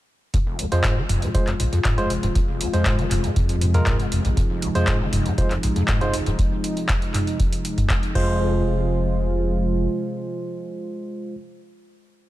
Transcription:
0.34 sub bass F1, acid bass F2, analog synth pad C3 F3 G#3 F4, kick, closed hi-hat
0.47 acid bass F1
0.59 acid bass F2, open hi-hat
0.72 acid bass F2, tine electric piano G#3 F4 C5, closed hi-hat
0.84 kick, clap, closed hi-hat
0.97 sub bass F1, acid bass F3
1.09 sub bass D#1, acid bass F1, mid tom, open hi-hat
1.22 acid bass C3, closed hi-hat
1.34 acid bass A#2, tine electric piano G#3 F4 C5, kick, open hi-hat
1.47 acid bass F2, clap, closed hi-hat
1.60 sub bass A#1, acid bass G#2, open hi-hat
1.73 acid bass F2, closed hi-hat
1.85 acid bass G#2, kick, clap, closed hi-hat
1.98 acid bass F2, tine electric piano G#3 F4 C5, closed hi-hat, mid tom
2.10 acid bass F1, open hi-hat
2.23 sub bass D#1, acid bass G2, closed hi-hat
2.35 acid bass F2, kick, closed hi-hat
2.48 acid bass F1
2.61 acid bass F2, open hi-hat
2.73 acid bass F2, tine electric piano G#3 F4 C5, closed hi-hat
2.86 kick, clap, closed hi-hat
2.99 sub bass F1, acid bass F3, closed hi-hat
3.11 sub bass D#1, acid bass F1, clap, mid tom, open hi-hat
3.24 acid bass C3, closed hi-hat
3.36 sub bass F2, acid bass A#2, kick, closed hi-hat
3.49 acid bass F2, open hi-hat
3.61 acid bass G#2, open hi-hat
3.74 acid bass F2, tine electric piano G#3 F4 A#4, closed hi-hat, mid tom
3.86 sub bass C2, acid bass G#2, kick, clap, closed hi-hat
4.00 acid bass F2, closed hi-hat
4.12 acid bass F1, sub bass F2, open hi-hat
4.25 sub bass A#1, acid bass G2, closed hi-hat
4.37 sub bass F1, acid bass F2, analog synth pad D#4, kick, closed hi-hat
4.50 acid bass F1
4.62 acid bass F2, open hi-hat
4.75 acid bass F2, tine electric piano G#3 F4 C5, closed hi-hat
4.87 acid bass G#2, kick, clap, closed hi-hat
5.00 sub bass F1, acid bass F3
5.13 sub bass D#1, acid bass F1, mid tom, open hi-hat
5.26 acid bass C3, closed hi-hat
5.38 acid bass A#2, tine electric piano G#3 F4 C5, kick, open hi-hat
5.51 acid bass F2, clap, closed hi-hat
5.63 sub bass A#1, acid bass G#2, open hi-hat
5.76 acid bass F2, closed hi-hat
5.88 acid bass G#2, kick, clap, closed hi-hat
6.01 acid bass F2, tine electric piano G#3 F4 C5, closed hi-hat, mid tom
6.14 acid bass F1, open hi-hat
6.26 sub bass D#1, acid bass G2, closed hi-hat
6.39 kick, closed hi-hat
6.64 open hi-hat
6.77 closed hi-hat
6.89 kick, clap, closed hi-hat
7.02 closed hi-hat
7.14 clap, mid tom, open hi-hat
7.27 closed hi-hat
7.40 kick, closed hi-hat
7.53 open hi-hat
7.65 open hi-hat
7.78 kick, closed hi-hat, mid tom
7.90 kick, clap, closed hi-hat
8.03 closed hi-hat
8.15 sub bass F1, acid bass F2, analog synth pad C3 F3 G#3 F4, tine electric piano G#3 F4 C5, kick, crash

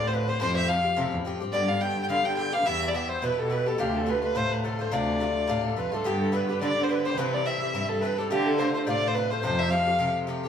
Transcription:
Already playing: bouzouki A2 D3 C4 F4, harp G4 A4 D5 E5
0.00 cello A2
0.07 accordion C5, harp C5, fiddle C5
0.12 bouzouki A2 D3 C4 F4, harp B4, fiddle B4, accordion B4
0.27 bouzouki D3 C4 F4, harp C5, fiddle C5, accordion C5
0.40 cello F2, bouzouki A2 F3 C4 G4, harp C5, accordion C5, fiddle C5
0.56 fiddle E5, harp E5
0.68 bouzouki A2 F3 C4 G4, fiddle F5, harp F5, accordion F5
0.84 bouzouki F3 C4 G4
0.96 bouzouki A2 F3 C4 G4, cello C3, accordion E5
1.13 cello E2
1.25 cello F2, bouzouki A2 F3 C4 G4
1.40 cello G2, bouzouki F3 C4 G4
1.53 bouzouki G2 D3 B3 G4, cello G2, fiddle D5, accordion D5, harp D5
1.69 fiddle F5, accordion F5
1.81 bouzouki G2 D3 B3 G4, fiddle G5, harp G5, accordion G5
2.03 harp G5, accordion G5, fiddle G5
2.09 bouzouki G2 D3 B3 G4, cello D3, fiddle F5, harp F5, accordion F5
2.24 cello D3, harp G5, fiddle G5, accordion G5
2.34 bouzouki G2, accordion F5 G5, harp G5, fiddle G5
2.38 bouzouki D3 B3 G4
2.52 bouzouki D3 B3 G4, harp F5, fiddle F5, accordion F5
2.65 cello E2, bouzouki G2 E3 B3 G4, accordion E5, fiddle E5, harp E5
2.88 fiddle D5, harp D5, accordion D5
2.93 bouzouki G2 E3 B3 G4, harp E5, accordion E5, fiddle E5
3.09 fiddle C5, accordion C5
3.22 bouzouki G2 E3 B3 G4, cello B2, accordion B4, harp B4, fiddle B4
3.38 cello B2, fiddle A4, accordion A4, harp A4
3.50 bouzouki G2 E3 B3 G4, fiddle B4, accordion B4, harp B4
3.66 bouzouki E3 B3 G4, accordion A4, harp A4, fiddle A4
3.78 cello D2, bouzouki C3 D3 A3 F4, accordion G4, fiddle G4, harp G4
3.96 fiddle A4, accordion A4, harp A4
4.06 bouzouki C3 D3 A3 F4, accordion B4, fiddle B4, harp B4
4.22 bouzouki D3 A3 F4, fiddle B4, accordion B4, harp B4
4.35 cello A2, bouzouki C3 D3 A3 F4, accordion C5, harp C5, fiddle C5
4.51 cello A2, harp B4, accordion B4, fiddle B4
4.63 bouzouki C3 D3 A3 F4, harp A4, accordion A4, fiddle A4
4.79 bouzouki D3 A3 F4, harp C5, accordion C5, fiddle C5
4.92 cello D2, bouzouki C3 D3 A3 F4, harp D5, fiddle D5, accordion D5
5.20 bouzouki C3 D3 A3 F4
5.47 cello A2, bouzouki C3 D3 A3 F4
5.63 cello A2, harp A4, accordion A4, fiddle A4
5.76 cello F2, bouzouki C3 D3 A3 F4, harp B4, accordion B4, fiddle B4
5.89 cello G2, bouzouki F4, harp A4, fiddle B4
5.93 bouzouki D3 A3, accordion A4, fiddle A4
6.04 bouzouki G2 D3 B3 G4, cello G2, harp G4, fiddle G4, accordion G4
6.21 harp A4, fiddle A4, accordion A4
6.32 bouzouki G2 D3 B3 G4, fiddle B4, harp B4, accordion B4
6.48 bouzouki D3 B3 G4, harp B4, fiddle B4, accordion B4
6.61 bouzouki G2 D3 B3 G4, cello D3, fiddle D5, accordion D5, harp D5
6.68 accordion D5
6.74 cello D3, accordion D5
6.84 fiddle C5, accordion C5, harp C5
6.89 bouzouki G2 D3 B3 G4, accordion B4, fiddle B4, harp B4
7.05 bouzouki D3 B3 G4, fiddle C5, accordion C5, harp C5
7.17 bouzouki G2 E3 C4 G4, cello C3, fiddle B4, accordion B4, harp B4
7.33 accordion D5, fiddle D5, harp D5
7.46 bouzouki G2 E3 C4 G4, fiddle E5, accordion E5, harp E5
7.62 bouzouki E3 C4 G4
7.73 bouzouki G2 E3 C4 G4, cello G2
7.89 cello G2, harp A4, fiddle A4
8.01 bouzouki G2 E3 C4 G4, accordion B4, fiddle B4, harp B4
8.18 bouzouki E3 C4 G4, fiddle A4, accordion A4, harp A4
8.30 bouzouki C3 D3 A3 F4, cello D3, fiddle G4, accordion G4, harp G4
8.46 fiddle A4, accordion A4
8.58 bouzouki C3 D3 A3 F4, fiddle C5, accordion C5, harp C5
8.74 bouzouki D3 A3 F4, accordion C5, fiddle C5
8.87 cello A2, bouzouki C3 D3 A3 F4, fiddle D5, accordion D5, harp D5
9.03 cello A2
9.08 fiddle C5
9.14 bouzouki C3 D3 A3 F4, fiddle B4, harp B4, accordion B4
9.30 bouzouki D3 A3 F4, harp C5, fiddle C5, accordion C5
9.43 cello F2, bouzouki C3 F3 A3 G4, accordion C5, harp C5, fiddle C5
9.59 fiddle E5, harp E5
9.71 bouzouki C3 F3 A3 G4, fiddle F5, accordion F5, harp F5
9.87 bouzouki F3 A3 G4
9.99 bouzouki C3 F3 A3 G4, cello C3
10.16 cello C3
10.27 bouzouki C3 F3 A3 G4
10.44 bouzouki A3 G4

